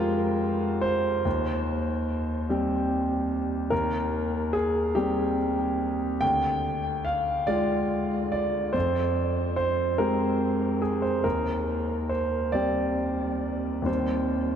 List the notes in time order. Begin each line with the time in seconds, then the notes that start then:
Already playing: F2 F3 G#3 F4 G4 A#4 C5
0.81 C5
1.25 D#2
2.49 G3 C4 G4
3.70 D#2 A#4
4.53 G#4
4.95 G3 C4 G4
6.21 D2 G5
7.05 F5
7.47 G#3 F4 D5
8.32 D5
8.73 F2 C5
9.56 C5
9.98 G#3 C4 G4 A#4
10.82 G#4
11.02 C5
11.24 D#2 A#4
12.09 C5
12.52 G3 C4 G4 D5
13.82 D#2 G3 C4 G4
13.86 C5